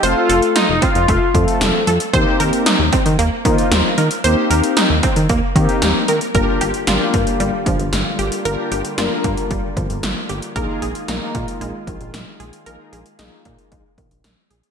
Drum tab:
HH |x-xxx-xxx-xxx-xx|x-xxx-xxx-xxx-xx|x-xxx-xxx-xxx-xx|x-xxx-xxx-xxx-xx|
SD |----o-------o---|----o-------o---|----o-------o---|----o-------o---|
BD |------o-o-o-----|o-----o---o-----|------o-o-o-----|o-----o---o-----|

HH |x-xxx-xxx-xxx-xx|x-xxx-xxx-xxx-xx|x-xxx-xxx-xxx-xx|
SD |----o-------o---|----o-------o---|----o-------o---|
BD |------o-o-o-----|o-----o---o-----|------o-o-o-----|